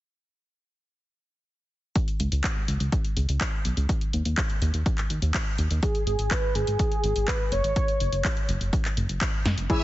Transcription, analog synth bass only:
2.20 2.29 C#2 medium
2.32 2.42 C#2 medium
2.68 2.78 C#2 medium
2.80 2.90 C#2 medium
3.17 3.26 C#2 medium
3.29 3.38 C#2 medium
3.65 3.75 B1 medium
3.77 3.87 C#2 medium
4.13 4.23 D#2 medium
4.25 4.35 D#2 medium
4.62 4.71 D#2 medium
4.74 4.84 D#2 medium
5.10 5.20 D#2 medium
5.22 5.32 D#2 medium
5.58 5.68 D#2 medium
5.71 5.80 D#2 medium
6.07 6.17 G#1 medium
6.19 6.29 G#1 medium
6.55 6.65 G#1 medium
6.67 6.77 G#1 medium
7.04 7.13 G#1 medium
7.16 7.26 G#1 medium
7.52 7.62 F#1 medium
7.64 7.74 G#1 medium
8.00 8.10 F#1 medium
8.12 8.22 F#1 medium
8.49 8.59 F#1 medium
8.61 8.71 F#1 medium
8.97 9.07 F#1 medium
9.09 9.19 F#1 medium
9.46 9.55 F#2 medium
9.58 9.67 F#1 medium

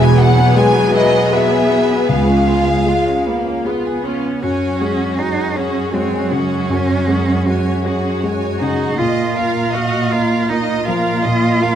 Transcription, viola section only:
0.00 2.10 F#3 medium
0.00 2.80 B3 medium
2.09 2.78 G#3 soft
2.88 3.24 G#3 soft
3.27 3.66 A#3 soft
3.65 4.04 B3 soft
4.05 4.44 C#4 soft
4.43 4.79 F#4 soft
4.82 5.20 G#4 soft
5.20 5.58 F#4 soft
5.56 5.95 G#4 soft
5.95 6.30 F#4 soft
6.32 6.71 G#4 soft
6.71 7.10 F#4 soft
7.09 7.48 G#4 soft
7.47 7.83 F#4 soft
7.85 8.23 G#4 soft
8.23 8.61 F#4 soft
8.60 8.98 G#4 soft
8.98 9.33 F4 soft
9.35 9.73 A#4 soft
9.74 10.11 F5 soft
10.12 10.49 A#4 soft
10.49 10.84 F4 soft
10.86 11.24 A#4 soft
11.24 11.62 F4 soft
11.62 11.75 A#4 soft

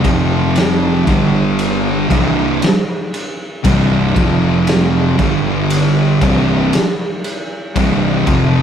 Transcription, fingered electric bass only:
0.04 1.03 F1 medium
1.07 2.06 G1 medium
2.10 2.58 C1 medium
3.65 4.13 C1 medium
4.16 5.15 F1 medium
5.19 6.18 G1 medium
6.22 6.69 C1 loud
7.76 8.24 C1 loud
8.27 8.62 F1 medium

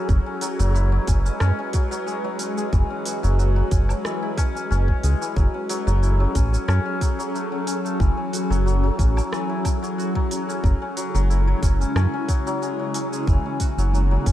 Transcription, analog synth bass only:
0.09 0.20 F#1 loud
0.59 0.99 F#1 medium
1.08 1.30 F#1 medium
1.41 1.52 F#2 medium
2.73 2.84 F#1 loud
3.24 3.63 F#1 medium
3.72 3.94 F#1 medium
4.71 4.93 F#1 medium
5.04 5.15 C#2 medium
5.36 5.48 F#1 loud
5.87 6.27 F#1 medium
6.35 6.57 A1 medium
6.68 6.80 F#2 medium
8.00 8.11 F#1 loud
8.50 8.90 F#1 medium
8.99 9.21 A1 medium
10.64 10.75 F#1 loud
11.15 11.54 F#1 medium
11.63 11.85 F#1 medium
11.96 12.07 F#2 medium
13.28 13.39 F#1 loud
13.77 14.17 F#1 medium
14.26 14.32 F#1 medium

